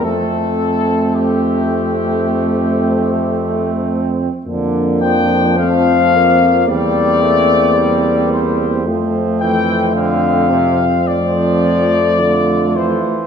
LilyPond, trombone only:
\new Staff \with { instrumentName = "Trombone" } { \clef bass \time 4/4 \key f \major \tempo 4 = 54 a1 | d8 f4. g8 a8 g4 | f8 e8 d8 c8 f4 d8 e8 | }